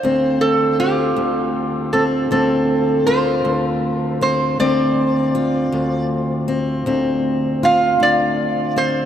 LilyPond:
<<
  \new Staff \with { instrumentName = "Resonator guitar played with a steel bar" } { \time 12/8 \key d \minor \tempo 4. = 53 c''8 a'8 g'4. a'8 a'4 c''4. c''8 | d''2 r2 f''8 d''4 c''8 | }
  \new Staff \with { instrumentName = "Steel-string acoustic guitar" } { \time 12/8 \key d \minor << { c'4 f'4. c'8 c'4 f'4. c'8 | c'4 f'4. c'8 c'4 f'4. c'8 | } \\ { d,4. d,4. d,4. d,4. | d,4. d,4. d,4. d,4. | } >> }
>>